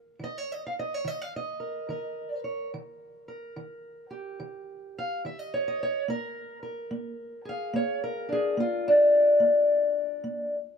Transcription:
Already playing: D#3 A#4
0.19 D#3
0.24 D#5
0.38 C#5
0.52 D#5
0.67 F5
0.79 D#5
0.94 C#5
1.05 D#3 D#5
1.22 F5
1.36 D#5
1.60 A#4
1.89 D#3 A#4
2.44 C#5
2.74 D#3
3.28 A#4
3.56 D#3
4.11 G4
4.40 D#3
4.98 F5
5.25 D#3 E5
5.39 D#5
5.54 C#5
5.68 D#5
5.83 C#5
6.08 A#3 A#4
6.63 A#4
6.91 A#3
7.45 G#4 F5
7.73 A#3 C#5
8.04 A#4
8.29 D4 G#4
8.57 A#3 F4
8.88 D4
9.40 A#3
10.24 A#3

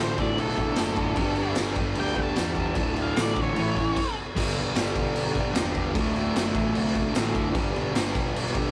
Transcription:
Already playing: A1 D2 F#4 A4 D5
0.00 A2 D3 C5
0.18 A2 D3 D5, kick, crash
0.22 D2
0.37 B1 D2 A2 A4, crash
0.42 D3
0.49 snare
0.56 A2 D3, kick, crash
0.61 D2
0.76 F#1 D2 A2, snare, tambourine, crash
0.81 D3
0.96 D3, kick, crash
1.02 A2
1.15 G1 G2 D3 G4 B4, kick, crash
1.20 G3 D5
1.36 G3, crash
1.41 D3
1.55 G1 G2, snare, tambourine, crash
1.60 D3 G3
1.67 snare
1.75 D3 G3, kick, crash
1.81 G2
1.95 D2 G2 D3, crash
2.00 G3 G5
2.06 snare
2.14 D3 G3, kick, crash
2.19 G2 A5
2.34 G2 D3, snare, tambourine, crash
2.38 E2 G3
2.54 G3, kick, crash
2.58 D3
2.75 D1 D2 A2 D3 F#4, kick, crash
2.79 A4 D5
2.94 D3, crash
2.99 A2 F5
3.16 A1 D2 A2, snare, tambourine, crash
3.20 D3 D5
3.28 snare
3.35 A2 D3, kick, crash
3.40 D2 C#5
3.54 A1 A2 E3 E4 A4 C#5, crash
3.60 A3
3.76 E3 A3, kick, crash
3.81 A2
3.96 kick, crash
4.35 G1 G2 D3 G4 B4, kick, crash
4.39 G3 D5
4.55 B1 G3, crash
4.60 D3
4.75 G1 G2, snare, tambourine, crash
4.79 D3 G3
4.87 snare
4.96 B1, kick, crash
5.14 B1, crash
5.34 G3, kick, crash
5.40 D3
5.54 E1 G2 D3, snare, tambourine, crash
5.58 G3
5.73 G3, kick, crash
5.77 D3
5.90 D2 F#4 A4 D5
5.95 D1 A2 D3, kick, crash
6.14 D3, crash
6.19 A2
6.34 F#1 D2 A2, snare, tambourine, crash
6.39 D3
6.55 A1, kick, crash
6.75 C2, crash
6.87 snare
6.95 D3, kick, crash
7.00 A2
7.13 A1 D2 A2, snare, tambourine, crash
7.18 D3
7.34 F#1 D3, kick, crash
7.39 A2
7.52 G1 G2 D3 G4 B4 D5, kick, crash
7.59 G3
7.73 B1 G3, crash
7.78 D3
7.93 G1 G2 D3, snare, tambourine, crash
7.98 G3
8.07 snare
8.15 B1, kick, crash
8.35 B1, crash
8.46 snare
8.53 G3, kick, crash
8.58 D3

